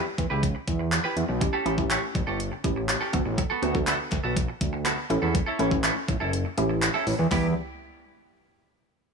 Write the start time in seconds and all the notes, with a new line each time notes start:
Already playing: G3 B3 E4 G4
0.06 muted clean electric guitar stroke
0.18 E2, muted clean electric guitar stroke, kick, closed hi-hat
0.30 C#2 E4 G4 B4
0.43 muted clean electric guitar stroke, kick, closed hi-hat
0.55 muted clean electric guitar stroke
0.68 E2, kick, closed hi-hat
0.79 muted clean electric guitar stroke
0.92 muted clean electric guitar stroke, clap, closed hi-hat
1.04 E4 G4 B4
1.16 E2, muted clean electric guitar stroke, closed hi-hat
1.29 B1, muted clean electric guitar stroke
1.41 A3 C#4 E4 G4, muted clean electric guitar stroke, kick, closed hi-hat
1.53 C#4 G4 A4
1.65 A1 A3 C#4 E4 G4 A4, closed hi-hat
1.78 A3 C#4 E4 G4, kick
1.90 C#4 G4 A4, clap, closed hi-hat
2.02 muted clean electric guitar stroke
2.15 A1, muted clean electric guitar stroke, kick, closed hi-hat
2.27 G1 C#4 G4 A4
2.39 muted clean electric guitar stroke, closed hi-hat
2.52 muted clean electric guitar stroke
2.64 A1 A3 C#4 E4 G4, kick, closed hi-hat
2.76 muted clean electric guitar stroke
2.89 muted clean electric guitar stroke, clap, closed hi-hat
3.01 C#4 G4 A4
3.13 D2 B3 D4 F#4 A4, kick, closed hi-hat
3.26 A1, muted clean electric guitar stroke
3.38 muted clean electric guitar stroke, kick, closed hi-hat
3.50 B3 F#4 A4
3.62 D2 B3 D4 F#4 A4 B4, closed hi-hat
3.75 B3 D4 F#4 A4, muted clean electric guitar stroke, kick
3.87 B3 F#4 A4, clap, closed hi-hat
3.99 muted clean electric guitar stroke
4.12 D2, muted clean electric guitar stroke, kick, clap, closed hi-hat
4.24 B1 B3 F#4 A4
4.36 muted clean electric guitar stroke, kick, closed hi-hat
4.48 muted clean electric guitar stroke
4.61 D2, kick, closed hi-hat
4.73 muted clean electric guitar stroke
4.85 B3 F#4 A4, clap, closed hi-hat
4.98 muted clean electric guitar stroke
5.10 A1 A3 C#4 E4 A4, muted clean electric guitar stroke, closed hi-hat
5.22 E2 C#4 E4 A4
5.34 muted clean electric guitar stroke, kick, closed hi-hat
5.46 C#4 E4 A4
5.59 A1 A3 C#4 E4 A4, closed hi-hat
5.71 A3 C#4 E4 A4, muted clean electric guitar stroke, kick
5.83 C#4 E4 A4, clap, closed hi-hat
5.96 muted clean electric guitar stroke
6.08 A1, muted clean electric guitar stroke, kick, closed hi-hat
6.20 F#1 C#4 E4 A4
6.33 muted clean electric guitar stroke, closed hi-hat
6.45 muted clean electric guitar stroke
6.58 A1 A3 C#4 E4 G4, closed hi-hat
6.69 muted clean electric guitar stroke
6.82 muted clean electric guitar stroke, clap, closed hi-hat
6.94 C#4 E4 A4
7.07 A1, muted clean electric guitar stroke, open hi-hat
7.19 E2, muted clean electric guitar stroke
7.31 E2 G3 B3 E4 G4, kick, clap, floor tom, open hi-hat